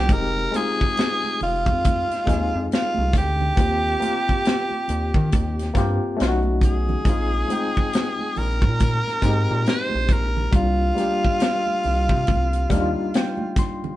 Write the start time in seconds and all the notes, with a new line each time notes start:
Already playing: G3 A#3 D4 D#4 F4 G4
0.08 F1 G#3 C4 D#4, kick, closed hi-hat, muted conga
0.13 G4 A#4
0.37 muted conga
0.51 G#3 C4 D#4, closed hi-hat, high conga
0.56 F4 G#4, snare
0.81 kick
0.97 snare, closed hi-hat, muted conga
1.24 muted conga, high conga
1.40 F1 F4, open hi-hat, low conga
1.66 F2, kick, closed hi-hat
1.84 kick, closed hi-hat, high conga
2.11 snare, closed hi-hat
2.25 D#2 G#3 C4 D#4, kick, closed hi-hat, high conga
2.30 G#4, snare
2.55 F2
2.71 F4, snare, closed hi-hat, muted conga
2.95 C2, muted conga, high conga
3.13 D2, kick, closed hi-hat
3.18 G4, snare
3.41 low conga
3.56 D#2 A#3 C4 F4, kick, closed hi-hat
3.61 G4
4.00 A#3 C4 F4, closed hi-hat, high conga
4.04 G4
4.29 kick
4.45 snare, closed hi-hat
4.71 high conga
4.88 D#2, closed hi-hat, low conga
5.14 D#3, kick
5.32 D#2, kick, closed hi-hat, muted conga, high conga
5.59 snare, closed hi-hat, muted conga
5.74 G2 A#3 C4 F4, kick, closed hi-hat, high conga
5.78 G4, snare
6.17 A3 C#4 D#4, closed hi-hat
6.21 B1 F4, snare
6.28 F#4
6.43 muted conga, high conga
6.61 G#4, kick, closed hi-hat
6.89 low conga
7.05 A#1 G#3 C4 D#4, kick, closed hi-hat, muted conga
7.09 F4
7.32 muted conga
7.48 G#3 C4 D#4, closed hi-hat, high conga
7.53 G5
7.77 kick
7.93 snare, closed hi-hat
8.19 high conga
8.36 A#1 A#4, open hi-hat, low conga
8.62 A#2, kick, closed hi-hat
8.80 kick, closed hi-hat, high conga
9.07 snare, muted conga
9.22 G#2 G#3 C4 D#4, kick, snare, closed hi-hat, high conga
9.26 G4
9.51 A#2
9.66 C5, snare, closed hi-hat
9.90 high conga
9.95 A#1
10.09 A#1, kick, closed hi-hat
10.13 A#4
10.37 low conga
10.51 C2 G3 A#3 D4, kick, closed hi-hat
10.56 F4
10.95 G3 A#3 D4, closed hi-hat, high conga
11.00 G4, snare
11.24 kick
11.40 snare, closed hi-hat, muted conga
11.67 muted conga, high conga
11.83 C2, open hi-hat, low conga
12.09 C3, kick
12.27 C2, kick, closed hi-hat, high conga
12.53 closed hi-hat, muted conga
12.70 D#2 G3 A#3 D4 F5, kick, snare, closed hi-hat, high conga
12.74 D#4
12.81 F4
13.14 G5, snare, closed hi-hat
13.37 muted conga, high conga
13.56 C6, kick, snare, closed hi-hat
13.84 low conga